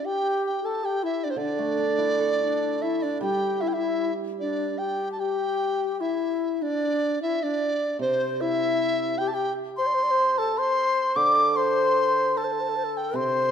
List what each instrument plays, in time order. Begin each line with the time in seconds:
0.04 xiao G4, dizi G5
0.46 dizi G5
0.64 xiao A4, dizi A5
0.83 xiao G4, dizi G5
1.03 xiao E4, dizi E5
1.24 xiao D4, dizi D5
1.30 dizi C5
1.36 hammered dulcimer D3, xiao D4, dizi D5
1.59 hammered dulcimer A3
1.79 hammered dulcimer D4
1.98 hammered dulcimer E4
2.19 hammered dulcimer A4
2.43 xiao D4
2.82 xiao E4, dizi E5
3.02 xiao D4, dizi D5
3.21 hammered dulcimer G3, xiao G4, dizi G5
3.61 xiao E4, dizi E5
3.68 dizi G5
3.73 xiao E4, dizi E5
4.39 xiao D4, dizi D5
4.78 xiao G4, dizi G5
5.12 dizi A5
5.19 xiao G4, dizi G5
6.01 xiao E4, dizi E5
6.62 xiao D4, dizi D5
7.22 xiao E4, dizi E5
7.43 xiao D4, dizi D5
7.99 hammered dulcimer C3, dizi C5, xiao C5
8.41 xiao E4, dizi E5
9.18 xiao G4, dizi G5
9.28 dizi A5
9.33 xiao G4, dizi G5
9.77 xiao C5, dizi C6
9.87 xiao D5
9.94 xiao C5
10.03 xiao D5
10.11 xiao C5
10.38 xiao A4, dizi A5
10.57 xiao C5, dizi C6
11.16 hammered dulcimer D3, xiao D5, dizi D6
11.56 xiao C5, dizi C6
12.37 xiao A4, dizi A5
12.44 xiao C5
12.52 xiao A4
12.61 xiao C5
12.69 xiao A4
12.76 xiao C5
12.84 xiao A4
12.97 dizi G5
13.14 hammered dulcimer C3, xiao C5, dizi C6